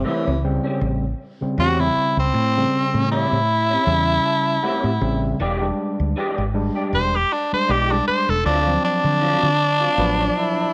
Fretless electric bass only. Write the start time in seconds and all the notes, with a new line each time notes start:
0.27 C#2
0.81 A1
1.42 muted fretless electric bass stroke
1.58 E2
1.96 muted fretless electric bass stroke
2.17 C#2
2.34 A2
2.94 A2
3.32 A2
3.87 E2
4.84 A2
5.01 A1
5.40 E1
6.00 D2
6.38 G#1
6.93 E1
7.53 muted fretless electric bass stroke
7.69 B1
8.09 muted fretless electric bass stroke
8.29 E1
8.46 D2
9.04 D3
9.43 D3
9.98 A1